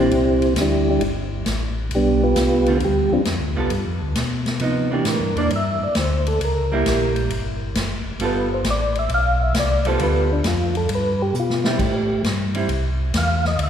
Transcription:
Already playing: A#1
0.00 E3 A#3 C4 D4 E4 G4 C5
0.11 C2, ride
0.42 ride
0.56 D2, snare, hi-hat pedal, ride
0.61 G3 D4 E4 G4
0.90 G3 D4 E4 G4
1.00 G1, ride
1.45 A1, snare, hi-hat pedal, ride
1.91 B1, ride
1.95 G3 B3 D4 G4
2.23 B3 F4 G4 B4
2.36 C2, snare, hi-hat pedal, ride
2.66 D3 A3 C4 F4, ride
2.80 D2, ride
2.85 G3 G4
3.11 D2 F3 C4 D4 F4
3.25 F2, snare, hi-hat pedal, ride
3.40 D2
3.56 C2 G3 B3 F4 A4
3.70 G2, ride
3.86 F2
4.02 D2
4.15 B2, snare, hi-hat pedal, ride
4.46 snare, ride
4.59 C3 F3 B3 D#4, ride
4.91 E3 A#3 D4 G4
5.05 A2, snare, hi-hat pedal, ride
5.10 A#4
5.20 G2
5.36 E2 E3 A#3 D4 D5, ride
5.50 G2, ride
5.56 E5
5.81 G2 D5
5.95 D2, snare, hi-hat pedal, ride
5.99 C5
6.26 A4, ride
6.40 C#2 A#4, ride
6.72 G3 A#3 E4
6.85 A#1, snare, hi-hat pedal, ride
7.16 ride
7.30 G1, ride
7.75 F#1, snare, hi-hat pedal, ride
8.05 F#1
8.19 G1 G3 B3 F4 A4, ride
8.25 B4
8.54 C5
8.64 A1, snare, hi-hat pedal, ride
8.70 D5
8.95 E5, ride
9.09 B1, ride
9.14 F5
9.43 E5
9.54 C2, snare, hi-hat pedal, ride
9.59 D5
9.85 G3 B3 F4 A4 C5, ride
9.99 D2 G3 B3 F4 A4, ride
10.03 B4
10.33 D4
10.44 F2 F4, snare, hi-hat pedal, ride
10.75 A4, ride
10.89 G2, ride
10.95 B4
11.22 G4
11.34 B2, hi-hat pedal
11.40 F4
11.50 snare
11.64 G3 C4 E4 G4, snare
11.79 A2, kick, crash
12.24 G2, snare, hi-hat pedal, ride
12.54 G3 C4 E4, ride
12.69 C2, ride
13.14 E2 F5, snare, hi-hat pedal, ride
13.45 D#5, snare
13.58 D2, ride
13.63 E5

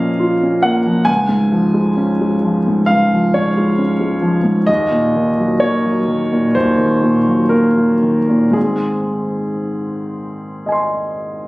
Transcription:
Already playing: A#2 F3 A#3 C#4 F4 D#5 F5
0.19 F4
0.43 C#4
0.62 A#3 F#5
0.85 F3
1.05 C#2 G#5
1.28 G#2
1.52 F3
1.74 G#3
1.97 C#4
2.21 G#3
2.43 F3
2.68 G#2
2.86 C#2 F5
3.13 F3
3.34 G#2 C#5
3.57 G#3
3.78 C#4
4.00 G#3
4.22 F3
4.44 G#2
4.66 D#2 D#5
4.91 A#2
5.16 D#3
5.39 F#3
5.60 A#3 C#5
5.85 F#3
6.08 D#3
6.33 A#2
6.55 D#2 C5
6.78 D#3
7.02 A#2
7.27 F#3
7.49 A#3 A#4
7.76 F#3
8.02 D#3
8.29 A#2
8.51 G#2 D#3 G#3 C4 G#4
10.66 D#5 G#5
10.72 C6

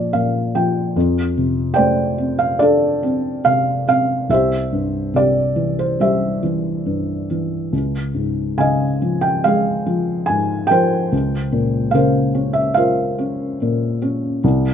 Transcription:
Already playing: A#2 F3 D4 F4 A#4 D5
0.13 A#2 F5
0.55 F3 G5
0.96 F2
1.37 C3
1.74 C5 D5 G5
1.78 A3
2.18 C4
2.39 F5
2.59 D4 A4 D5
3.03 C4
3.45 C3 F5
3.87 C4 F5
4.29 C2 G4 C5 E5
4.72 G2
5.14 C3 G4 D5
5.56 E3
5.79 C5
6.00 G3 G4 C5 E5
6.43 E3
6.86 G2
7.31 E3
7.73 C#2
8.15 G#2
8.58 C#3 D#5 F5 G#5
9.02 F3
9.21 G5
9.44 G#3 G#4 F5
9.86 F3
10.26 G#2 G#5
10.67 F3 A#4 G5
10.71 C5
11.12 C#2
11.52 A#2
11.91 C#3 A#4 F5
11.95 C5
12.35 C#4
12.53 E5
12.74 F4 A#4 C5 F5
13.19 C#4
13.62 A#2
14.02 C#4
14.44 C2

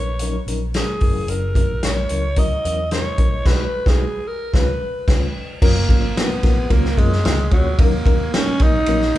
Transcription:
Already playing: A#1 C#5
0.19 F#3 C#4 D#4 A#4, closed hi-hat
0.47 A#1 F#3 C#4 D#4 A#4, closed hi-hat
0.74 F#3 C#4 D#4 G#4 A#4, snare, closed hi-hat
1.00 F#1 F#3 C#4 E4 A#4, kick, open hi-hat
1.15 F1
1.28 F#1 A#4, closed hi-hat
1.55 F#3 C#4 E4 A#4, kick, closed hi-hat
1.69 A#1
1.83 A#1 F#3 C#4 E4 A#4 C#5, snare, closed hi-hat
2.09 C#2 F#3 C#4 E4 A#4, closed hi-hat
2.36 F#3 C#4 E4 A#4 D#5, kick, closed hi-hat
2.65 E2 F#3 C#4 E4 A#4, closed hi-hat
2.91 F#3 C#4 E4 A#4 C#5, snare, closed hi-hat
3.18 A#1 F#3 C#4 E4 A#4, kick, closed hi-hat
3.45 B1 G#3 D#4 F#4 B4, kick, snare, crash
3.86 B1 G#3 D#4 F#4 G#4 B4, kick, snare
4.28 A#4
4.53 C#2 G#3 C#4 F4 B4, kick, snare
5.08 C#2 G#3 C#4 F4 B4, kick, snare, crash
5.62 F#1 F#3 A#3 C#4 F4 A#4, kick, crash
5.89 G#1 F#3 A#3 C#4 F4 A#4, kick, ride
6.17 F#3 A#3 B3 C#4 F4 A#4, snare, ride
6.30 muted fingered electric bass stroke
6.43 A#1 F#3 A#3 C#4 F4 A#4, kick, snare, ride
6.70 C#2 F#3 A#3 C#4 F4 A#4, kick, ride
6.85 snare
6.97 F#2 F#3 G#3 A#3 C#4 F4 A#4, kick, ride
7.12 snare
7.25 C#2 F#3 A#3 C#4 F4 A#4, snare, ride
7.51 D2 F#3 A#3 C#4 F4 C#5, kick, ride
7.79 D#2 F#3 A#3 C#4 D#4 A#4, kick, ride
8.06 D#2 F#3 A#3 C#4 D#4 A#4, kick, ride
8.34 F#3 A#3 C#4 D#4 A#4, snare, ride
8.47 muted fingered electric bass stroke
8.60 A#1 F#3 A#3 C#4 D#4 A#4, kick, ride
8.86 A#1 F#3 A#3 C#4 D#4 A#4, ride
9.02 snare
9.15 D#3

